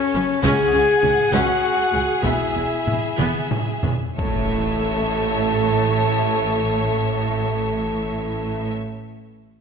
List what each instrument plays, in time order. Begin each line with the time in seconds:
Already playing: french horn section C#4, violin section A4 C#5, flute C#5
0.15 double bass section F#1, cello section F#2, viola section C#4
0.43 cello section C#2, double bass section C#2, viola section C#4, french horn section G#4, violin section G#4 F#5, flute G#5, taiko
0.72 cello section C#2, double bass section C#2, viola section C#4
1.02 cello section C#2, double bass section C#2, viola section C#4, taiko low-mid
1.32 cello section C#2, double bass section C#2, viola section C#4, french horn section F#4, flute F#5, taiko
1.93 cello section C#2, double bass section C#2, viola section C#4
2.23 double bass section E1, cello section E2, viola section B3, french horn section E4, violin section E5, flute E5, taiko
2.55 double bass section E1, cello section E2, viola section B3
2.86 double bass section E1, cello section E2, viola section B3, taiko low-mid
3.18 double bass section E1, cello section E2, viola section B3, taiko mid
3.51 taiko low-mid
3.84 double bass section E1, cello section E2, viola section B3, taiko low
4.17 double bass section A1, cello section A2, viola section A3, french horn section A4, violin section C#5 E5, flute A5, impact